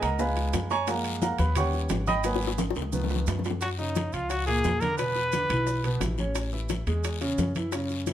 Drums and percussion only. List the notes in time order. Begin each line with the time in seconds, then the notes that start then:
0.02 high bongo, high conga, high timbale, short guiro, maracas
0.19 high bongo, high conga, long guiro, maracas
0.36 high bongo, high conga, high timbale, maracas
0.53 high bongo, low bongo, high conga, high timbale, low timbale, short guiro, maracas
0.70 high bongo, high conga, short guiro, maracas
0.87 high bongo, high conga, high timbale, long guiro, maracas
1.05 high conga, high timbale, maracas
1.22 high bongo, high conga, low timbale, short guiro, maracas
1.38 high bongo, high conga, high timbale, short guiro, maracas
1.55 high bongo, high conga, low conga, high timbale, long guiro, maracas
1.73 high bongo, high conga, maracas
1.89 high bongo, low bongo, high conga, high timbale, low timbale, short guiro, maracas
2.07 high bongo, high conga, short guiro, maracas
2.23 high bongo, high conga, high timbale, long guiro, maracas
2.36 high bongo
2.41 high conga, maracas
2.47 high bongo
2.58 low bongo, high conga, high timbale, short guiro, maracas
2.71 high bongo
2.75 high conga, high timbale, short guiro, maracas
2.82 low bongo
2.92 low bongo, high conga, long guiro, maracas
3.04 low bongo
3.09 high conga, low timbale, maracas
3.16 low bongo
3.27 high conga, low timbale, short guiro, maracas
3.39 low bongo
3.44 high conga, low timbale, short guiro, maracas
3.50 low bongo
3.61 high bongo, high conga, high timbale, long guiro, maracas
3.78 high bongo, high conga, maracas
3.95 high bongo, high conga, high timbale, low timbale, short guiro, maracas
4.12 high conga, high timbale, short guiro, maracas
4.30 high bongo, high conga, high timbale, long guiro, maracas
4.47 high bongo, high conga, high timbale, maracas
4.64 high bongo, low bongo, high conga, low timbale, short guiro, maracas
4.81 high bongo, high conga, high timbale, short guiro, maracas
4.98 high bongo, high conga, high timbale, long guiro, maracas
5.15 high bongo, high conga, maracas
5.32 high bongo, high conga, high timbale, low timbale, short guiro, maracas
5.49 high conga, high timbale, short guiro, maracas
5.67 high bongo, high conga, long guiro, maracas
5.84 high bongo, high conga, high timbale, maracas
6.01 high bongo, low bongo, high conga, high timbale, low timbale, short guiro, maracas
6.18 high bongo, high conga, short guiro, maracas
6.35 high bongo, high conga, high timbale, long guiro, maracas
6.52 high bongo, high conga, maracas
6.69 high bongo, high conga, high timbale, low timbale, short guiro, maracas
6.87 high timbale, short guiro, maracas
7.04 high bongo, high conga, high timbale, long guiro, maracas
7.21 high bongo, high conga, high timbale, maracas
7.38 high bongo, low bongo, high conga, low timbale, short guiro, maracas
7.55 high bongo, high conga, high timbale, short guiro, maracas
7.72 high bongo, high conga, high timbale, long guiro, maracas
7.89 high bongo, high conga, maracas
8.07 high bongo, high conga, high timbale, low timbale, short guiro, maracas